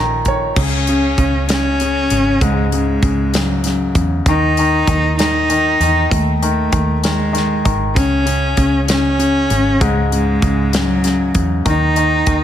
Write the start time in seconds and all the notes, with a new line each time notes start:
Already playing: A#1 A#2 D#3 A#5
0.25 D#3 C#5, kick, closed hi-hat
0.56 C#2 C#3 C#4, kick, crash
0.87 C#3, closed hi-hat
1.18 C#2 C#3, kick, closed hi-hat
1.49 C#3 C#4, snare, closed hi-hat
1.80 C#3, closed hi-hat
2.10 G#1 C#3, closed hi-hat
2.41 C#2 G#2 G#3, kick, closed hi-hat
2.72 C#3 G#3, closed hi-hat
3.03 C#2 C#3, kick, closed hi-hat
3.34 C#3 F#3, snare, closed hi-hat
3.64 C#3, snare, closed hi-hat
3.95 E2 C#3, kick, closed hi-hat
4.26 D#2 D#3 D#4, kick, closed hi-hat
4.57 D#3, closed hi-hat
4.87 D#2 D#3, kick, closed hi-hat
5.18 D#3 D#4, snare, closed hi-hat
5.50 D#3, closed hi-hat
5.80 E2 D#3, closed hi-hat
6.11 D#2 A3, kick, closed hi-hat
6.41 D#3 A3, closed hi-hat
6.72 D#2 D#3, kick, closed hi-hat
6.96 A3
7.04 D#3 G#3, snare, closed hi-hat
7.33 D#3, snare, closed hi-hat
7.65 G#1 D#3, kick, closed hi-hat
7.95 C#2 C#3 C#4, kick, closed hi-hat
8.26 C#3, closed hi-hat
8.57 C#2 C#3, kick, closed hi-hat
8.88 C#3 C#4, snare, closed hi-hat
9.19 C#3, closed hi-hat
9.50 G#1 C#3, closed hi-hat
9.81 C#2 G#2 G#3, kick, closed hi-hat
10.12 C#3 G#3, closed hi-hat
10.42 C#2 C#3, kick, closed hi-hat
10.73 C#3 F#3, snare, closed hi-hat
11.04 C#3, snare, closed hi-hat
11.34 E2 C#3, kick, closed hi-hat
11.65 D#2 D#3 D#4, kick, closed hi-hat
11.96 D#3, closed hi-hat
12.27 D#2 D#3, kick, closed hi-hat